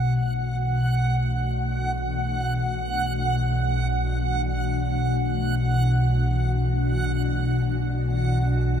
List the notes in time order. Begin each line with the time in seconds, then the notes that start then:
Already playing: B1 B2 E3 A3 D4 F#4 F#5